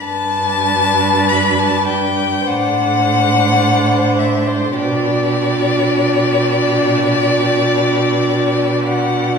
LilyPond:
<<
  \new Staff \with { instrumentName = "Violin" } { \time 4/4 \key g \major \tempo 4 = 52 a''4 b''16 a''16 g''8 fis''4. e''16 c''16 | d''2.~ d''8 fis''8 | }
  \new Staff \with { instrumentName = "Violin" } { \time 4/4 \key g \major b'2 c''2 | g'1 | }
  \new Staff \with { instrumentName = "Viola" } { \time 4/4 \key g \major d'2 d'2 | d'1 | }
  \new Staff \with { instrumentName = "Cello" } { \clef bass \time 4/4 \key g \major g,2 a,2 | b,1 | }
>>